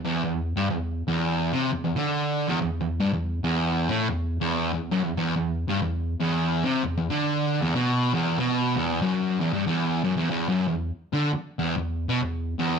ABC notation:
X:1
M:4/4
L:1/16
Q:"Swing" 1/4=94
K:Em
V:1 name="Distorted electric guitar" clef=bass
E,, E,,2 G,, E,,2 E,,3 C, E,, E,, D,3 E,, | E,, E,, G,, E,,2 E,,3 A,, E,,2 E,,2 E,, F,, E,, | E,, E,,2 G,, E,,2 E,,3 C, E,, E,, D,3 E,, | B,,2 E,,2 B,,2 E,,2 F,,2 E,, G,, E,,2 F,, E,, |
E,, F,, E,,2 z D, z2 E,, E,,2 B,, E,,2 E,,2 |]